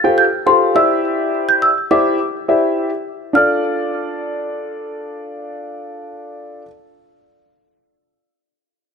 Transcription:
Already playing: marimba A6
0.04 grand piano F4 G4 A4 C5 G5
0.18 marimba G6
0.46 grand piano F4 G4 A4 C5 F5, marimba C6
0.75 grand piano E4 G4 C5 D5 E5, marimba E6
1.49 marimba G6
1.62 marimba E6
1.91 grand piano E4 G4 C5 D5 E5, marimba D6
2.48 grand piano E4 G4 C5 D5 E5
3.33 grand piano D4 F4 A4, marimba F6
3.37 grand piano D5

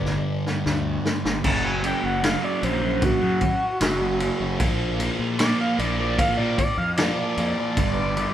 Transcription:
Already playing: fingered electric bass G1, distorted electric guitar G2 D3 G3, analog synth lead D5
0.06 snare
0.46 snare
0.66 fingered electric bass D2, snare
1.05 snare
1.25 fingered electric bass G1, snare
1.43 fingered electric bass F#1, distorted electric guitar F#2 C#3 F#3, analog synth lead A5, kick, crash
1.64 analog synth lead G#5
1.83 distorted electric guitar F#2 C#3 F#3, analog synth lead G5, ride
2.03 fingered electric bass F#1, analog synth lead F#5
2.22 distorted electric guitar F#2 C#3 F#3, analog synth lead F5, snare, ride
2.41 distorted electric guitar C#3 F#3, analog synth lead D5
2.61 fingered electric bass A#1, distorted electric guitar F#2 C#3 F#3, analog synth lead C5, ride
2.81 distorted electric guitar C#3 F#3
3.02 analog synth lead F#4, kick, ride
3.20 fingered electric bass F#2, distorted electric guitar C#3 F#3
3.41 muted distorted electric guitar stroke, kick, ride
3.81 fingered electric bass F#1, distorted electric guitar F#2 C#3 F#3, snare, ride
4.01 distorted electric guitar C#3 F#3
4.20 distorted electric guitar F#2 C#3 F#3, ride
4.40 fingered electric bass F#1, distorted electric guitar C#3 F#3
4.59 fingered electric bass A#1, distorted electric guitar A#2 F3 A#3, kick, ride
4.98 distorted electric guitar A#2 F3 A#3, ride
5.19 fingered electric bass A#2
5.39 distorted electric guitar A#2 F3 A#3, analog synth lead D5, snare, ride
5.58 distorted electric guitar F3 A#3, analog synth lead F5
5.78 fingered electric bass A#1, distorted electric guitar A#2 F3 A#3, analog synth lead D5, ride
5.99 distorted electric guitar F3 A#3, analog synth lead D5
6.19 analog synth lead F5, kick, ride
6.37 fingered electric bass A#2, distorted electric guitar F3 A#3, analog synth lead D5
6.58 analog synth lead D5, muted distorted electric guitar stroke, kick, ride
6.77 fingered electric bass F2, analog synth lead F5
6.97 distorted electric guitar A#2 F3 A#3, analog synth lead D5, snare, ride
7.18 distorted electric guitar F3 A#3
7.37 fingered electric bass F2, distorted electric guitar A#2 F3 A#3, analog synth lead D5, ride
7.58 distorted electric guitar F3 A#3
7.77 fingered electric bass G1, distorted electric guitar G2 D3 G3, kick, ride
8.17 distorted electric guitar G2 D3 G3, ride

